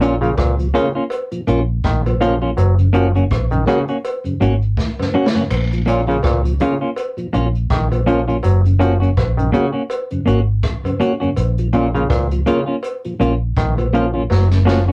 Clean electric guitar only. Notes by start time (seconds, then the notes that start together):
0.01 A#3 C#4 F4
0.21 A#3 C#4 F4
0.74 A#3 C#4 F4
0.95 A#3 C#4 F4
1.47 A#3 C#4 F4
2.21 A#3 C#4 F4
2.42 A#3 C#4 F4
2.93 A#3 C#4 F#4
3.15 A#3 C#4 F#4
3.67 A#3 C#4 F#4
3.89 A#3 C#4 F#4
4.41 A#3 C#4 F#4
5.14 A#3 C#4 F#4
5.35 A#3 C#4 F#4
5.86 A#3 C#4 F4
6.07 A#3 C#4 F4
6.61 A#3 C#4 F4
6.81 A#3 C#4 F4
7.33 A#3 C#4 F4
8.06 A#3 C#4 F4
8.28 A#3 C#4 F4
8.79 A#3 C#4 F#4
9.00 A#3 C#4 F#4
9.53 A#3 C#4 F#4
9.73 A#3 C#4 F#4
10.26 A#3 C#4 F#4
11.00 A#3 C#4 F#4
11.20 A#3 C#4 F#4
11.73 A#3 C#4 F4
11.94 A#3 C#4 F4
12.46 A#3 C#4 F4
12.66 A#3 C#4 F4
13.20 A#3 C#4 F4
13.93 A#3 C#4 F4
14.13 A#3 C#4 F4
14.65 A#3 C#4 F#4
14.88 A#3 C#4 F#4